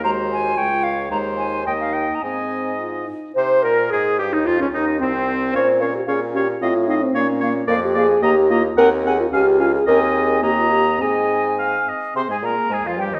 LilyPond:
<<
  \new Staff \with { instrumentName = "Flute" } { \time 2/4 \key aes \major \tempo 4 = 110 bes''8 aes''8 g''8 f''8 | bes''8 aes''8 g''16 f''16 g''16. bes''32 | aes''4 r4 | c''8 bes'8 aes'8 g'16 ees'16 |
f'16 des'16 ees'8 c'4 | f''8 f''8 f''8 f''8 | f''8 f''8 f''8 f''8 | f''8 f''8 bes''8 bes''8 |
aes''8 aes''8 aes''8 aes''8 | aes''4 bes''4 | aes''4. r8 | c'''16 aes''16 bes''8 aes''16 f''16 g''16 ees''16 | }
  \new Staff \with { instrumentName = "Oboe" } { \time 2/4 \key aes \major c''4 des''4 | c''4 ees''4 | ees''4. r8 | c''8 bes'8 aes'8 g'16 ees'16 |
f'16 des'16 ees'8 c'4 | des''8 des''8 des''8 des''8 | ees''8 ees''8 des''8 des''8 | d''8 d''8 ees''8 ees''8 |
ges''8 ges''8 f''8 f''8 | ees''4 ees''4 | ees''4 f''8 ees''8 | c''16 aes'16 bes'8 aes'16 f'16 g'16 ees'16 | }
  \new Staff \with { instrumentName = "French horn" } { \time 2/4 \key aes \major aes4 aes4 | aes4 bes4 | c'4 f'8 ees'8 | c''8 bes'8 aes'8 g'16 ees'16 |
f'16 des'16 ees'8 c'4 | c''8 bes'16 g'16 aes'8 g'8 | f'8 ees'16 c'16 des'4 | bes'16 g'16 aes'8 g'8 f'8 |
bes'8 aes'16 f'16 g'8 f'16 aes'16 | bes'8 aes'8 g'16 f'16 g'8 | aes'4 r4 | c'16 aes16 bes8 aes16 f16 g16 ees16 | }
  \new Staff \with { instrumentName = "Clarinet" } { \time 2/4 \key aes \major ges'4 f'4 | ees'4 ees'4 | ees'4. r8 | c''8 bes'8 aes'8 g'16 ees'16 |
f'16 des'16 ees'8 c'4 | des'8 des'8 des'8 des'8 | c'8 c'8 bes8 bes8 | bes8 bes8 bes8 bes8 |
c'8 c'8 des'8 des'8 | c'4 bes4 | c'4. r8 | aes'4 c''4 | }
  \new Staff \with { instrumentName = "Bassoon" } { \clef bass \time 2/4 \key aes \major ees,4 des,4 | ees,4 ees,4 | aes,4. r8 | c8 bes,8 aes,8 g,16 ees,16 |
f,16 des,16 ees,8 c,4 | bes,4 bes,4 | a,4 bes,4 | f,4 ees,4 |
ees,4 des,4 | ees,4 ees,4 | aes,4. r8 | c16 aes,16 bes,8 aes,16 f,16 g,16 ees,16 | }
>>